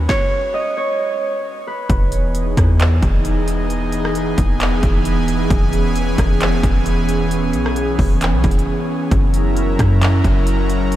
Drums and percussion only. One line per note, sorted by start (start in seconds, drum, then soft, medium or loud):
0.09 kick loud
0.09 snare medium
1.90 kick loud
1.90 closed hi-hat medium
2.12 closed hi-hat medium
2.35 closed hi-hat medium
2.57 kick medium
2.57 cross-stick loud
2.57 closed hi-hat medium
2.80 clap loud
2.80 closed hi-hat medium
3.03 kick loud
3.03 closed hi-hat medium
3.25 closed hi-hat medium
3.48 closed hi-hat medium
3.70 closed hi-hat medium
3.92 closed hi-hat medium
4.05 cross-stick loud
4.15 closed hi-hat medium
4.38 kick medium
4.38 closed hi-hat medium
4.60 clap loud
4.60 closed hi-hat medium
4.83 kick loud
4.83 closed hi-hat medium
5.05 closed hi-hat medium
5.28 closed hi-hat medium
5.50 kick loud
5.50 closed hi-hat medium
5.73 closed hi-hat medium
5.96 closed hi-hat medium
6.18 kick medium
6.18 cross-stick loud
6.18 closed hi-hat medium
6.41 clap loud
6.41 closed hi-hat medium
6.63 kick loud
6.63 closed hi-hat medium
6.86 closed hi-hat medium
7.09 closed hi-hat medium
7.31 closed hi-hat medium
7.53 closed hi-hat medium
7.66 cross-stick loud
7.76 closed hi-hat medium
7.99 kick medium
7.99 open hi-hat medium
8.21 clap loud
8.21 closed hi-hat medium
8.44 kick loud
8.44 closed hi-hat soft
8.51 closed hi-hat medium
8.59 closed hi-hat soft
9.11 kick loud
9.11 closed hi-hat medium
9.34 closed hi-hat medium
9.57 closed hi-hat medium
9.79 kick medium
9.79 cross-stick loud
9.79 closed hi-hat medium
10.02 clap loud
10.02 closed hi-hat medium
10.24 kick loud
10.24 closed hi-hat medium
10.47 closed hi-hat medium
10.70 closed hi-hat medium
10.92 closed hi-hat medium